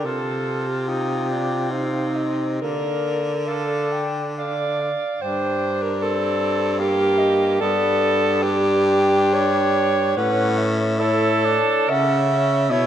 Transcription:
0.05 2.61 C3 medium
0.05 0.90 F4 medium
0.05 0.69 A4 medium
0.05 0.87 A5 medium
0.68 0.89 G4 medium
0.87 1.29 D#4 medium
0.87 1.72 F4 medium
0.87 1.72 G5 medium
1.30 1.73 D4 medium
1.70 2.62 C4 medium
1.70 2.61 D#4 loud
1.70 2.17 F5 medium
2.16 2.63 D#5 medium
2.62 4.91 D3 medium
2.62 3.32 A#3 medium
2.62 3.49 A#4 loud
2.62 3.49 D5 medium
3.47 4.93 D4 medium
3.47 4.08 A4 loud
3.47 3.93 F5 medium
3.92 4.24 G5 medium
4.38 5.23 D5 loud
4.38 4.80 F5 medium
4.80 5.23 F5 medium
5.21 7.57 G2 medium
5.21 6.04 D4 medium
5.21 5.84 C5 loud
5.21 5.76 G5 medium
5.82 6.04 A#4 loud
6.01 6.82 C4 medium
6.01 6.79 A4 loud
6.01 6.80 D5 medium
6.79 7.61 A#3 medium
6.79 7.62 G4 loud
6.79 7.20 F5 medium
7.19 7.59 D#5 medium
7.60 10.13 G2 medium
7.60 8.44 B3 medium
7.60 8.45 A4 loud
7.60 8.44 D5 medium
8.42 10.17 D4 medium
8.42 9.35 G4 loud
8.42 10.16 G5 medium
9.34 10.19 C#5 loud
10.17 11.57 A2 medium
10.17 11.01 C#4 medium
10.17 10.72 B4 loud
10.17 10.59 F#5 medium
10.57 11.02 E5 medium
10.99 11.46 E4 medium
10.99 11.91 A4 loud
10.99 11.91 C#5 medium
11.45 11.90 D4 loud
11.89 12.71 C#3 medium
11.89 12.18 C#4 medium
11.89 12.73 E5 loud
11.89 12.44 F#5 medium
12.31 12.72 C#4 medium
12.69 12.87 B2 medium
12.69 12.87 E4 medium
12.69 12.87 C#5 loud
12.69 12.87 E5 medium

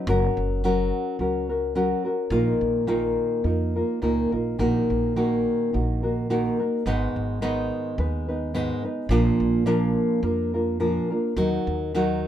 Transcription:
0.07 0.27 F#1 loud
0.07 0.62 F#3 loud
0.07 0.63 C#4 loud
0.07 0.63 F#4 loud
0.07 0.65 A#4 loud
0.37 0.90 F#1 medium
0.64 1.18 F#3 loud
0.64 1.19 C#4 medium
0.64 1.20 F#4 loud
0.64 1.21 A#4 loud
1.19 1.92 C#2 medium
1.19 1.49 F#3 medium
1.19 1.50 C#4 medium
1.19 1.49 F#4 medium
1.19 1.48 A#4 medium
1.49 1.74 C#4 soft
1.49 1.75 F#4 medium
1.49 1.75 A#4 medium
1.75 2.05 F#3 medium
1.75 2.05 C#4 medium
1.75 2.05 F#4 medium
1.75 2.03 A#4 loud
2.05 2.31 C#4 medium
2.05 2.31 F#4 medium
2.05 2.31 A#4 medium
2.30 2.50 A#1 loud
2.30 2.86 A#2 medium
2.30 2.87 D#3 medium
2.30 2.88 A#3 medium
2.30 2.88 D#4 medium
2.30 2.87 F4 loud
2.30 2.88 A#4 loud
2.61 3.15 A#1 medium
2.87 3.44 A#2 medium
2.87 3.48 D#3 loud
2.87 3.44 A#3 medium
2.87 3.44 D#4 medium
2.87 3.44 F4 medium
2.87 3.45 A#4 medium
3.44 3.81 F2 medium
3.44 3.75 A#3 medium
3.44 3.75 D#4 medium
3.44 3.75 F4 medium
3.44 3.74 A#4 medium
3.76 4.01 A#3 soft
3.76 4.01 D#4 soft
3.76 4.01 F4 medium
3.76 4.02 A#4 medium
4.02 4.29 C#2 medium
4.02 4.32 A#2 medium
4.02 4.32 D#3 medium
4.02 4.32 A#3 medium
4.02 4.32 D#4 medium
4.02 4.31 F4 medium
4.02 4.30 A#4 medium
4.32 4.56 A#1 medium
4.32 4.58 A#3 soft
4.32 4.58 D#4 soft
4.32 4.59 F4 medium
4.32 4.58 A#4 medium
4.58 4.79 A#1 loud
4.58 5.15 A#2 medium
4.58 5.16 D#3 loud
4.58 5.15 A#3 medium
4.58 5.16 D#4 medium
4.58 5.15 F#4 medium
4.58 5.16 A#4 loud
4.90 5.44 A#1 medium
5.16 5.73 A#2 medium
5.16 6.30 D#3 medium
5.16 5.72 A#3 medium
5.16 5.73 D#4 medium
5.16 5.73 F#4 loud
5.16 5.73 A#4 loud
5.73 6.47 A#1 medium
5.73 6.03 A#3 medium
5.73 6.03 D#4 medium
5.73 6.02 F#4 medium
5.73 6.02 A#4 medium
6.03 6.29 A#3 soft
6.03 6.29 D#4 medium
6.03 6.29 F#4 medium
6.03 6.29 A#4 medium
6.30 6.60 A#2 medium
6.30 6.60 D#3 loud
6.30 6.59 A#3 medium
6.30 6.59 D#4 medium
6.30 6.59 F#4 medium
6.30 6.58 A#4 medium
6.59 6.86 A#3 soft
6.59 6.85 D#4 soft
6.59 6.86 F#4 medium
6.59 6.85 A#4 medium
6.86 7.05 G#1 loud
6.86 7.40 G#2 loud
6.86 7.41 D#3 medium
6.86 7.41 G#3 loud
6.86 7.41 B3 loud
6.86 7.41 D#4 loud
6.86 7.41 B4 medium
7.16 7.69 G#1 medium
7.41 7.97 G#2 loud
7.41 7.98 D#3 medium
7.41 7.97 G#3 loud
7.41 7.98 B3 loud
7.41 7.98 D#4 loud
7.41 7.98 B4 medium
7.98 8.71 D#2 loud
7.98 8.28 G#3 medium
7.98 8.28 B3 medium
7.98 8.28 D#4 medium
7.98 8.27 B4 medium
8.28 8.53 G#3 soft
8.28 8.54 B3 medium
8.28 8.54 D#4 medium
8.28 8.54 B4 medium
8.54 8.84 G#2 loud
8.54 8.84 D#3 medium
8.54 8.84 G#3 loud
8.54 8.84 B3 medium
8.54 8.84 D#4 loud
8.54 8.83 B4 loud
8.84 9.10 G#3 soft
8.84 9.10 B3 medium
8.84 9.10 D#4 medium
8.84 9.10 B4 medium
9.09 9.29 A#1 loud
9.09 9.64 A#2 loud
9.09 9.64 F3 loud
9.09 9.66 A#3 loud
9.09 9.65 D4 loud
9.09 9.65 F4 loud
9.09 9.67 A#4 loud
9.40 9.94 A#1 medium
9.65 10.22 A#2 loud
9.65 10.22 F3 medium
9.65 10.22 A#3 loud
9.65 10.22 D4 loud
9.65 10.23 F4 loud
9.65 10.24 A#4 loud
10.23 10.97 F2 medium
10.23 10.53 A#3 medium
10.23 10.53 D4 medium
10.23 10.53 F4 medium
10.23 10.53 A#4 medium
10.54 10.79 A#3 medium
10.54 10.79 D4 soft
10.54 10.79 F4 medium
10.54 10.79 A#4 medium
10.80 11.10 A#2 medium
10.80 11.10 F3 medium
10.80 11.10 A#3 medium
10.80 11.10 D4 medium
10.80 11.10 F4 medium
10.80 11.09 A#4 loud
11.10 11.36 A#3 soft
11.10 11.37 D4 medium
11.10 11.37 F4 medium
11.10 11.36 A#4 medium
11.36 11.56 D#2 loud
11.36 11.93 D#3 medium
11.36 11.94 F#3 medium
11.36 11.94 D#4 medium
11.36 11.95 F#4 loud
11.36 11.95 A#4 medium
11.67 12.22 D#2 medium
11.94 12.28 D#3 medium
11.94 12.28 F#3 medium
11.94 12.28 D#4 loud
11.94 12.28 F#4 loud
11.94 12.28 A#4 medium

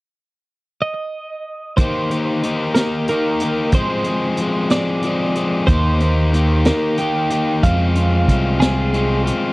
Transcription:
0.82 1.77 D#5 medium
1.77 2.42 D#3 medium
1.77 2.12 A#3 medium
1.77 2.11 D#4 medium
1.77 2.71 C5 medium
1.77 kick loud
1.77 closed hi-hat medium
1.81 2.10 G4 medium
2.11 2.43 A#3 medium
2.11 2.43 D#4 medium
2.11 2.44 G4 medium
2.11 closed hi-hat medium
2.43 3.08 D#3 medium
2.43 2.77 A#3 medium
2.43 2.76 D#4 medium
2.43 2.75 G4 medium
2.43 closed hi-hat medium
2.75 3.08 A#3 medium
2.75 3.10 D#4 medium
2.75 3.10 G4 medium
2.75 3.05 A#4 medium
2.75 snare loud
2.75 closed hi-hat medium
3.08 3.72 D#3 medium
3.08 3.43 A#3 medium
3.08 3.42 D#4 medium
3.08 3.41 G4 medium
3.08 3.69 A#4 medium
3.08 closed hi-hat medium
3.40 3.72 D#4 medium
3.40 3.72 G4 medium
3.40 closed hi-hat medium
3.44 3.73 A#3 soft
3.72 4.38 F3 medium
3.72 4.08 G#3 medium
3.72 4.08 C4 medium
3.72 4.67 C5 medium
3.72 kick loud
3.72 closed hi-hat medium
3.76 4.06 G#4 loud
4.04 4.41 G#4 medium
4.04 closed hi-hat medium
4.09 4.40 G#3 medium
4.09 4.41 C4 medium
4.37 5.03 F3 medium
4.37 4.74 G#3 medium
4.37 closed hi-hat medium
4.42 4.73 C4 medium
4.42 4.71 G#4 medium
4.70 5.04 C4 medium
4.70 5.05 G#4 medium
4.70 5.67 D5 medium
4.70 snare loud
4.70 closed hi-hat medium
4.75 5.04 G#3 soft
5.03 5.67 F3 medium
5.03 5.38 G#3 medium
5.03 5.37 C4 medium
5.03 5.35 G#4 medium
5.03 closed hi-hat medium
5.35 5.68 G#3 medium
5.35 5.67 C4 medium
5.35 5.66 G#4 medium
5.35 closed hi-hat medium
5.67 6.70 D#2 medium
5.67 6.32 D#3 medium
5.67 6.02 A#3 medium
5.67 6.01 D#4 medium
5.67 6.61 C5 medium
5.67 kick loud
5.67 closed hi-hat medium
5.72 5.99 G4 medium
6.00 6.33 A#3 medium
6.00 6.33 D#4 medium
6.00 6.34 G4 medium
6.00 closed hi-hat medium
6.33 6.98 D#3 medium
6.33 6.68 A#3 medium
6.33 6.66 D#4 medium
6.33 6.65 G4 medium
6.33 closed hi-hat medium
6.65 6.98 A#3 medium
6.65 6.99 D#4 medium
6.65 7.00 G4 medium
6.65 6.96 A#4 medium
6.65 snare loud
6.65 closed hi-hat medium
6.97 7.62 D#3 medium
6.97 7.32 A#3 medium
6.97 7.31 D#4 medium
6.97 7.29 G4 medium
6.97 7.63 G5 loud
6.97 closed hi-hat medium
7.30 7.62 A#3 medium
7.30 7.62 D#4 medium
7.30 7.61 G4 medium
7.30 closed hi-hat medium
7.63 8.29 F2 medium
7.63 8.27 G#3 medium
7.63 7.97 C4 medium
7.63 7.95 F4 medium
7.63 9.22 F5 medium
7.63 kick loud
7.63 closed hi-hat medium
7.95 8.28 C4 medium
7.95 8.29 F4 medium
7.95 closed hi-hat medium
8.28 9.30 C2 medium
8.28 8.92 G#3 medium
8.28 8.62 C4 medium
8.28 8.60 F4 medium
8.28 kick medium
8.28 closed hi-hat medium
8.60 8.93 C4 medium
8.60 8.94 F4 medium
8.60 9.21 G#4 loud
8.60 snare loud
8.60 closed hi-hat medium
8.93 9.53 G#3 medium
8.93 9.27 C4 medium
8.93 9.24 F4 medium
8.93 closed hi-hat medium
9.26 9.53 C4 medium
9.26 9.53 F4 medium
9.26 closed hi-hat medium

